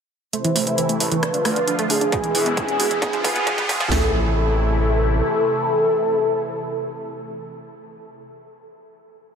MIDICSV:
0, 0, Header, 1, 7, 480
1, 0, Start_track
1, 0, Key_signature, 0, "minor"
1, 0, Tempo, 447761
1, 358, Time_signature, 4, 2, 24, 8
1, 10023, End_track
2, 0, Start_track
2, 0, Title_t, "Soft synth lead"
2, 0, Program_c, 0, 80
2, 357, Note_on_c, 0, 72, 95
2, 981, Note_off_c, 0, 72, 0
2, 1078, Note_on_c, 0, 71, 96
2, 1942, Note_off_c, 0, 71, 0
2, 2037, Note_on_c, 0, 68, 99
2, 2661, Note_off_c, 0, 68, 0
2, 2756, Note_on_c, 0, 68, 105
2, 3381, Note_off_c, 0, 68, 0
2, 3477, Note_on_c, 0, 68, 104
2, 4101, Note_off_c, 0, 68, 0
2, 4196, Note_on_c, 0, 69, 108
2, 8852, Note_off_c, 0, 69, 0
2, 10023, End_track
3, 0, Start_track
3, 0, Title_t, "Synth arpeggio sound"
3, 0, Program_c, 1, 84
3, 356, Note_on_c, 1, 57, 83
3, 407, Note_off_c, 1, 57, 0
3, 477, Note_on_c, 1, 52, 104
3, 527, Note_off_c, 1, 52, 0
3, 597, Note_on_c, 1, 57, 73
3, 647, Note_off_c, 1, 57, 0
3, 716, Note_on_c, 1, 57, 72
3, 766, Note_off_c, 1, 57, 0
3, 836, Note_on_c, 1, 52, 96
3, 886, Note_off_c, 1, 52, 0
3, 956, Note_on_c, 1, 57, 75
3, 1006, Note_off_c, 1, 57, 0
3, 1076, Note_on_c, 1, 57, 73
3, 1126, Note_off_c, 1, 57, 0
3, 1195, Note_on_c, 1, 52, 98
3, 1246, Note_off_c, 1, 52, 0
3, 1316, Note_on_c, 1, 62, 78
3, 1366, Note_off_c, 1, 62, 0
3, 1436, Note_on_c, 1, 62, 77
3, 1486, Note_off_c, 1, 62, 0
3, 1557, Note_on_c, 1, 57, 99
3, 1607, Note_off_c, 1, 57, 0
3, 1677, Note_on_c, 1, 62, 73
3, 1727, Note_off_c, 1, 62, 0
3, 1797, Note_on_c, 1, 62, 77
3, 1847, Note_off_c, 1, 62, 0
3, 1918, Note_on_c, 1, 57, 104
3, 1967, Note_off_c, 1, 57, 0
3, 2037, Note_on_c, 1, 62, 77
3, 2087, Note_off_c, 1, 62, 0
3, 2158, Note_on_c, 1, 62, 80
3, 2207, Note_off_c, 1, 62, 0
3, 2279, Note_on_c, 1, 47, 103
3, 2328, Note_off_c, 1, 47, 0
3, 2397, Note_on_c, 1, 52, 78
3, 2447, Note_off_c, 1, 52, 0
3, 2518, Note_on_c, 1, 52, 74
3, 2567, Note_off_c, 1, 52, 0
3, 2638, Note_on_c, 1, 47, 100
3, 2687, Note_off_c, 1, 47, 0
3, 2758, Note_on_c, 1, 52, 80
3, 2807, Note_off_c, 1, 52, 0
3, 2877, Note_on_c, 1, 52, 75
3, 2927, Note_off_c, 1, 52, 0
3, 2997, Note_on_c, 1, 47, 104
3, 3047, Note_off_c, 1, 47, 0
3, 3117, Note_on_c, 1, 52, 75
3, 3167, Note_off_c, 1, 52, 0
3, 3237, Note_on_c, 1, 59, 84
3, 3287, Note_off_c, 1, 59, 0
3, 3357, Note_on_c, 1, 53, 105
3, 3407, Note_off_c, 1, 53, 0
3, 3477, Note_on_c, 1, 59, 77
3, 3527, Note_off_c, 1, 59, 0
3, 3597, Note_on_c, 1, 59, 76
3, 3647, Note_off_c, 1, 59, 0
3, 3718, Note_on_c, 1, 53, 99
3, 3767, Note_off_c, 1, 53, 0
3, 3839, Note_on_c, 1, 59, 80
3, 3888, Note_off_c, 1, 59, 0
3, 3958, Note_on_c, 1, 59, 76
3, 4007, Note_off_c, 1, 59, 0
3, 4077, Note_on_c, 1, 53, 107
3, 4127, Note_off_c, 1, 53, 0
3, 4198, Note_on_c, 1, 57, 92
3, 4421, Note_off_c, 1, 57, 0
3, 10023, End_track
4, 0, Start_track
4, 0, Title_t, "Supersaw synth"
4, 0, Program_c, 2, 81
4, 359, Note_on_c, 2, 48, 79
4, 360, Note_on_c, 2, 52, 72
4, 360, Note_on_c, 2, 57, 77
4, 360, Note_on_c, 2, 64, 85
4, 1309, Note_off_c, 2, 48, 0
4, 1309, Note_off_c, 2, 52, 0
4, 1309, Note_off_c, 2, 64, 0
4, 1318, Note_on_c, 2, 50, 81
4, 1318, Note_on_c, 2, 53, 70
4, 1318, Note_on_c, 2, 65, 85
4, 2260, Note_off_c, 2, 57, 0
4, 2268, Note_off_c, 2, 50, 0
4, 2268, Note_off_c, 2, 53, 0
4, 2268, Note_off_c, 2, 65, 0
4, 2278, Note_on_c, 2, 56, 73
4, 2279, Note_on_c, 2, 47, 77
4, 2279, Note_on_c, 2, 52, 74
4, 2279, Note_on_c, 2, 64, 87
4, 3228, Note_off_c, 2, 47, 0
4, 3228, Note_off_c, 2, 56, 0
4, 3229, Note_off_c, 2, 52, 0
4, 3229, Note_off_c, 2, 64, 0
4, 3238, Note_on_c, 2, 50, 80
4, 3238, Note_on_c, 2, 53, 73
4, 3238, Note_on_c, 2, 59, 76
4, 3238, Note_on_c, 2, 65, 86
4, 4188, Note_off_c, 2, 50, 0
4, 4188, Note_off_c, 2, 53, 0
4, 4188, Note_off_c, 2, 59, 0
4, 4188, Note_off_c, 2, 65, 0
4, 4197, Note_on_c, 2, 48, 86
4, 4197, Note_on_c, 2, 52, 77
4, 4198, Note_on_c, 2, 57, 78
4, 4198, Note_on_c, 2, 64, 93
4, 8852, Note_off_c, 2, 48, 0
4, 8852, Note_off_c, 2, 52, 0
4, 8852, Note_off_c, 2, 57, 0
4, 8852, Note_off_c, 2, 64, 0
4, 10023, End_track
5, 0, Start_track
5, 0, Title_t, "Analog synth bass"
5, 0, Program_c, 3, 38
5, 595, Note_on_c, 3, 33, 101
5, 750, Note_off_c, 3, 33, 0
5, 1075, Note_on_c, 3, 33, 81
5, 1230, Note_off_c, 3, 33, 0
5, 1556, Note_on_c, 3, 38, 98
5, 1711, Note_off_c, 3, 38, 0
5, 2037, Note_on_c, 3, 26, 80
5, 2191, Note_off_c, 3, 26, 0
5, 2517, Note_on_c, 3, 40, 101
5, 2671, Note_off_c, 3, 40, 0
5, 2997, Note_on_c, 3, 40, 82
5, 3151, Note_off_c, 3, 40, 0
5, 3478, Note_on_c, 3, 35, 101
5, 3631, Note_off_c, 3, 35, 0
5, 3958, Note_on_c, 3, 29, 83
5, 4111, Note_off_c, 3, 29, 0
5, 4198, Note_on_c, 3, 33, 99
5, 5595, Note_off_c, 3, 33, 0
5, 10023, End_track
6, 0, Start_track
6, 0, Title_t, "Riser"
6, 0, Program_c, 4, 103
6, 357, Note_on_c, 4, 60, 80
6, 4197, Note_off_c, 4, 60, 0
6, 10023, End_track
7, 0, Start_track
7, 0, Title_t, "Drums"
7, 357, Note_on_c, 9, 42, 75
7, 464, Note_off_c, 9, 42, 0
7, 477, Note_on_c, 9, 42, 51
7, 585, Note_off_c, 9, 42, 0
7, 597, Note_on_c, 9, 46, 102
7, 704, Note_off_c, 9, 46, 0
7, 717, Note_on_c, 9, 42, 52
7, 824, Note_off_c, 9, 42, 0
7, 837, Note_on_c, 9, 42, 80
7, 944, Note_off_c, 9, 42, 0
7, 957, Note_on_c, 9, 42, 52
7, 1064, Note_off_c, 9, 42, 0
7, 1076, Note_on_c, 9, 46, 100
7, 1184, Note_off_c, 9, 46, 0
7, 1196, Note_on_c, 9, 42, 55
7, 1303, Note_off_c, 9, 42, 0
7, 1317, Note_on_c, 9, 37, 71
7, 1317, Note_on_c, 9, 42, 79
7, 1424, Note_off_c, 9, 37, 0
7, 1424, Note_off_c, 9, 42, 0
7, 1436, Note_on_c, 9, 42, 53
7, 1543, Note_off_c, 9, 42, 0
7, 1556, Note_on_c, 9, 37, 72
7, 1556, Note_on_c, 9, 46, 96
7, 1663, Note_off_c, 9, 37, 0
7, 1663, Note_off_c, 9, 46, 0
7, 1675, Note_on_c, 9, 42, 55
7, 1783, Note_off_c, 9, 42, 0
7, 1796, Note_on_c, 9, 42, 74
7, 1903, Note_off_c, 9, 42, 0
7, 1916, Note_on_c, 9, 42, 53
7, 2023, Note_off_c, 9, 42, 0
7, 2036, Note_on_c, 9, 46, 100
7, 2144, Note_off_c, 9, 46, 0
7, 2158, Note_on_c, 9, 42, 55
7, 2265, Note_off_c, 9, 42, 0
7, 2277, Note_on_c, 9, 36, 102
7, 2277, Note_on_c, 9, 42, 78
7, 2384, Note_off_c, 9, 36, 0
7, 2384, Note_off_c, 9, 42, 0
7, 2397, Note_on_c, 9, 42, 50
7, 2505, Note_off_c, 9, 42, 0
7, 2517, Note_on_c, 9, 46, 108
7, 2624, Note_off_c, 9, 46, 0
7, 2637, Note_on_c, 9, 42, 53
7, 2745, Note_off_c, 9, 42, 0
7, 2757, Note_on_c, 9, 36, 102
7, 2758, Note_on_c, 9, 42, 79
7, 2864, Note_off_c, 9, 36, 0
7, 2865, Note_off_c, 9, 42, 0
7, 2878, Note_on_c, 9, 42, 54
7, 2985, Note_off_c, 9, 42, 0
7, 2998, Note_on_c, 9, 46, 105
7, 3105, Note_off_c, 9, 46, 0
7, 3118, Note_on_c, 9, 42, 56
7, 3225, Note_off_c, 9, 42, 0
7, 3237, Note_on_c, 9, 36, 102
7, 3238, Note_on_c, 9, 42, 80
7, 3345, Note_off_c, 9, 36, 0
7, 3346, Note_off_c, 9, 42, 0
7, 3359, Note_on_c, 9, 42, 52
7, 3466, Note_off_c, 9, 42, 0
7, 3477, Note_on_c, 9, 36, 107
7, 3479, Note_on_c, 9, 46, 109
7, 3585, Note_off_c, 9, 36, 0
7, 3586, Note_off_c, 9, 46, 0
7, 3598, Note_on_c, 9, 42, 54
7, 3706, Note_off_c, 9, 42, 0
7, 3718, Note_on_c, 9, 36, 102
7, 3719, Note_on_c, 9, 42, 77
7, 3825, Note_off_c, 9, 36, 0
7, 3826, Note_off_c, 9, 42, 0
7, 3838, Note_on_c, 9, 36, 94
7, 3839, Note_on_c, 9, 42, 53
7, 3945, Note_off_c, 9, 36, 0
7, 3946, Note_off_c, 9, 42, 0
7, 3958, Note_on_c, 9, 36, 108
7, 3959, Note_on_c, 9, 46, 104
7, 4065, Note_off_c, 9, 36, 0
7, 4066, Note_off_c, 9, 46, 0
7, 4078, Note_on_c, 9, 36, 97
7, 4079, Note_on_c, 9, 42, 53
7, 4185, Note_off_c, 9, 36, 0
7, 4186, Note_off_c, 9, 42, 0
7, 4198, Note_on_c, 9, 38, 108
7, 4198, Note_on_c, 9, 43, 105
7, 4198, Note_on_c, 9, 46, 90
7, 4305, Note_off_c, 9, 38, 0
7, 4305, Note_off_c, 9, 43, 0
7, 4305, Note_off_c, 9, 46, 0
7, 10023, End_track
0, 0, End_of_file